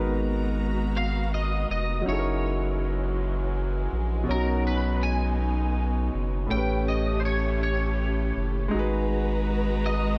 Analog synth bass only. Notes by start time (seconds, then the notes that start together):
Already playing: G#1
1.70 F1
2.07 F#1
3.92 A#1
4.29 B1
6.14 F#1
6.51 A1
8.37 F#1
8.74 G#1